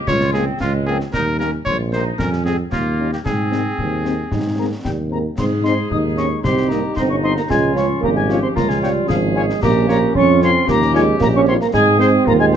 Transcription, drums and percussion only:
0.07 concert bass drum, snare
0.21 snare
0.34 snare
0.60 concert bass drum, snare
1.00 snare
1.14 concert bass drum, snare, crash
1.40 snare
1.66 concert bass drum
1.93 snare
2.19 concert bass drum, snare
2.33 snare
2.46 snare
2.72 concert bass drum, snare
3.13 snare
3.26 concert bass drum, snare
3.52 snare
3.79 concert bass drum
4.05 snare
4.32 concert bass drum, snare
4.85 concert bass drum, snare
5.38 concert bass drum, snare, crash
5.65 snare
5.91 concert bass drum
6.17 snare
6.44 concert bass drum, snare
6.57 snare
6.70 snare
6.97 concert bass drum, snare
7.37 snare
7.50 concert bass drum, snare
7.76 snare
8.03 concert bass drum
8.30 snare
8.57 concert bass drum, snare
8.70 snare
8.83 snare
9.09 concert bass drum, snare
9.49 snare
9.63 concert bass drum, snare, crash
9.89 snare
10.15 concert bass drum
10.42 snare
10.68 concert bass drum, snare
10.82 snare
10.95 snare
11.21 concert bass drum, snare
11.61 snare
11.74 concert bass drum, snare
12.00 snare
12.27 concert bass drum

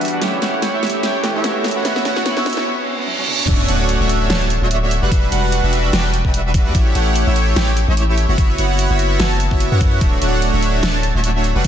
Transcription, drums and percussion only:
0.01 closed hi-hat
0.05 closed hi-hat
0.08 closed hi-hat
0.22 snare, closed hi-hat
0.42 snare, closed hi-hat
0.62 snare, closed hi-hat
0.83 snare, closed hi-hat
0.87 closed hi-hat
0.90 closed hi-hat
1.03 snare, closed hi-hat
1.24 snare, closed hi-hat
1.44 snare, closed hi-hat
1.64 snare, closed hi-hat
1.68 closed hi-hat
1.71 closed hi-hat
1.85 snare, closed hi-hat
1.96 snare
2.05 snare, closed hi-hat
2.16 snare
2.26 snare, closed hi-hat
2.37 snare
2.46 snare, closed hi-hat
2.50 closed hi-hat
2.53 closed hi-hat
2.57 snare
3.07 high tom
3.18 high tom
3.28 mid tom
3.39 mid tom
3.48 kick, closed hi-hat, crash
3.69 closed hi-hat
3.89 closed hi-hat
4.09 closed hi-hat
4.30 snare, closed hi-hat
4.50 closed hi-hat
4.71 closed hi-hat
4.91 closed hi-hat
5.11 kick, closed hi-hat
5.32 closed hi-hat
5.52 closed hi-hat
5.73 closed hi-hat
5.93 snare, closed hi-hat
6.14 closed hi-hat
6.25 kick
6.34 closed hi-hat
6.54 kick, closed hi-hat
6.75 kick, closed hi-hat
6.95 closed hi-hat
7.16 closed hi-hat
7.36 closed hi-hat
7.56 snare, closed hi-hat
7.77 closed hi-hat
7.97 closed hi-hat
8.18 closed hi-hat
8.38 kick, closed hi-hat
8.58 closed hi-hat
8.79 closed hi-hat
8.99 closed hi-hat
9.20 snare, closed hi-hat
9.40 closed hi-hat
9.51 kick
9.60 closed hi-hat
9.81 kick, closed hi-hat
10.01 kick, closed hi-hat
10.22 closed hi-hat
10.42 closed hi-hat
10.63 closed hi-hat
10.83 snare, closed hi-hat
11.03 closed hi-hat
11.24 closed hi-hat
11.44 closed hi-hat
11.64 closed hi-hat

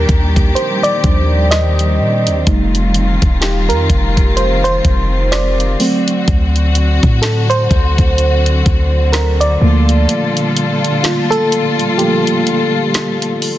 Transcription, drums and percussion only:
0.09 kick, closed hi-hat
0.36 kick, closed hi-hat
0.56 closed hi-hat
0.84 closed hi-hat
1.04 kick, closed hi-hat
1.52 snare, closed hi-hat
1.79 closed hi-hat
2.27 closed hi-hat
2.47 kick, closed hi-hat
2.75 closed hi-hat
2.94 closed hi-hat
3.22 kick, closed hi-hat
3.42 snare, closed hi-hat
3.70 closed hi-hat
3.90 kick, closed hi-hat
4.17 kick, closed hi-hat
4.37 closed hi-hat
4.65 closed hi-hat
4.85 kick, closed hi-hat
5.32 snare, closed hi-hat
5.60 closed hi-hat
5.80 open hi-hat
6.08 closed hi-hat
6.28 kick, closed hi-hat
6.56 closed hi-hat
6.75 closed hi-hat
7.03 kick, closed hi-hat
7.23 snare, closed hi-hat
7.51 closed hi-hat
7.71 kick, closed hi-hat
7.98 kick, closed hi-hat
8.18 closed hi-hat
8.46 closed hi-hat
8.66 kick, closed hi-hat
9.13 snare, closed hi-hat
9.41 closed hi-hat
9.89 closed hi-hat
10.09 closed hi-hat
10.37 closed hi-hat
10.57 closed hi-hat
10.84 closed hi-hat
11.04 snare, closed hi-hat
11.32 closed hi-hat
11.52 closed hi-hat
11.79 closed hi-hat
11.99 closed hi-hat
12.27 closed hi-hat
12.47 closed hi-hat
12.94 snare, closed hi-hat
13.22 closed hi-hat
13.42 open hi-hat

